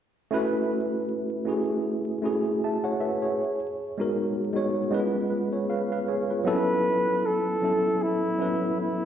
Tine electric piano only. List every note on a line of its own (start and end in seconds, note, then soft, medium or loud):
0.31 1.04 A3 loud
0.31 1.05 C#4 medium
0.31 1.05 E4 medium
0.31 1.06 F#4 medium
0.31 1.06 B4 loud
1.45 1.96 A3 medium
1.45 1.96 C#4 medium
1.45 1.97 E4 medium
1.45 1.97 F#4 medium
1.45 1.97 G#4 medium
2.22 3.22 A3 medium
2.22 3.23 C#4 medium
2.22 3.23 E4 medium
2.22 3.23 F#4 medium
2.22 2.63 G#4 medium
2.64 2.84 E5 medium
2.64 2.83 A5 medium
2.84 3.00 C#5 medium
2.84 3.00 F#5 medium
3.01 3.21 B4 soft
3.01 3.21 E5 medium
3.22 3.59 G#4 soft
3.22 3.58 C#5 medium
3.98 4.34 G#3 medium
3.98 4.35 B3 medium
3.98 4.35 D#4 medium
3.98 4.36 F#4 medium
3.98 4.36 A#4 medium
4.53 4.89 G#3 medium
4.53 4.90 B3 medium
4.53 4.93 D#4 medium
4.53 4.93 F#4 medium
4.53 4.94 C#5 medium
4.91 6.16 G#3 medium
4.91 6.16 B3 medium
4.91 6.16 C#4 medium
4.91 5.00 E4 medium
4.91 5.29 B4 medium
5.00 5.29 F4 medium
5.30 5.51 F4 soft
5.30 5.51 B4 medium
5.53 5.69 G#4 medium
5.53 5.69 C#5 medium
5.70 5.90 B4 medium
5.70 5.90 F5 medium
5.92 6.08 B4 medium
5.92 6.08 F5 medium
6.08 6.29 G#4 medium
6.08 6.29 C#5 medium
6.30 6.67 F4 soft
6.30 6.66 B4 medium
6.44 7.19 F#3 loud
6.44 7.19 B3 medium
6.44 6.53 C4 medium
6.44 7.20 E4 medium
6.44 7.20 A4 loud
6.52 7.23 C#4 medium
7.62 8.12 F#3 medium
7.62 8.12 B3 soft
7.62 8.13 C#4 medium
7.62 8.13 E4 medium
7.62 8.13 A4 medium
8.38 9.05 F#3 medium
8.38 9.05 B3 medium
8.38 9.05 C#4 medium
8.38 9.05 E4 medium
8.38 9.05 B4 medium